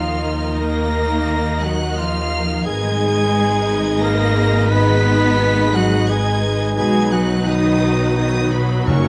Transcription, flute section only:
0.00 0.29 F5 loud
0.60 1.61 A#5 loud
1.64 1.98 F#5 loud
1.99 2.66 F5 loud
2.65 4.02 G#5 loud
4.03 4.71 A#5 loud
4.72 5.75 B5 loud
5.74 6.09 F#5 loud
6.09 6.75 G#5 loud
6.76 7.11 G#5 loud
7.12 7.47 F#5 loud
7.46 7.95 D#5 loud
8.19 8.52 D#5 loud
8.53 8.88 B4 medium
8.87 9.08 C#5 loud

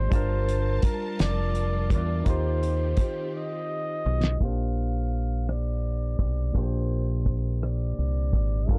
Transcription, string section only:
0.12 2.24 G3 medium
0.12 4.36 F4 medium
0.12 2.24 A#4 medium
0.12 2.24 A5 medium
2.26 4.39 D#3 medium
2.26 4.38 C4 medium
2.26 4.38 G4 medium
8.69 8.79 G3 medium
8.69 8.79 A#3 medium
8.69 8.79 F4 medium

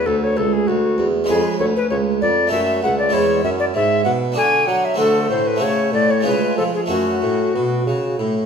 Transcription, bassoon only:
0.06 0.39 D2 soft
0.37 0.67 C#2 soft
0.68 0.97 D2 soft
0.98 1.28 E2 soft
1.29 1.43 F2 medium
1.60 1.74 D2 soft
1.91 2.21 C#2 medium
2.22 2.51 F2 soft
2.51 2.82 F#2 soft
2.83 3.13 C#2 soft
3.14 3.44 E2 medium
3.44 3.74 F#2 soft
3.75 4.05 G#2 soft
4.05 4.36 B2 soft
4.37 4.67 D3 soft
4.67 4.97 F#3 soft
4.98 5.29 D3 medium
5.29 5.63 A2 soft
5.61 5.94 C#3 soft
5.92 6.24 A2 soft
6.24 6.39 C#3 soft
6.57 6.72 F3 soft
6.89 7.21 F#2 soft
7.22 7.53 A2 soft
7.54 7.86 B2 soft
7.86 8.17 C#3 soft
8.18 8.46 A2 soft

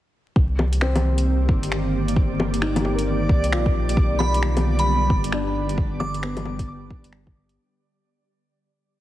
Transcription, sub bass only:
0.36 1.48 C2 medium
1.49 2.38 G1 medium
2.39 3.28 G1 medium
3.29 3.53 C2 medium
3.52 3.96 A#1 medium
3.97 5.09 B1 loud
5.10 5.99 G1 medium
6.00 6.89 G1 medium
7.05 7.57 G1 medium

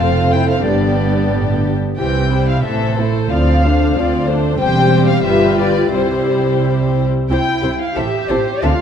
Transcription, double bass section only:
0.00 0.66 F1 soft
0.66 1.77 G1 soft
1.99 2.58 C2 soft
2.65 3.25 A1 soft
3.33 3.90 D2 soft
3.98 4.53 D2 soft
4.61 5.22 E1 medium
5.26 5.93 G1 soft
5.94 7.08 C2 soft
7.30 7.38 C2 soft
7.63 7.71 C2 soft
7.96 8.04 A1 soft
8.30 8.38 A1 soft
8.64 8.72 D2 medium

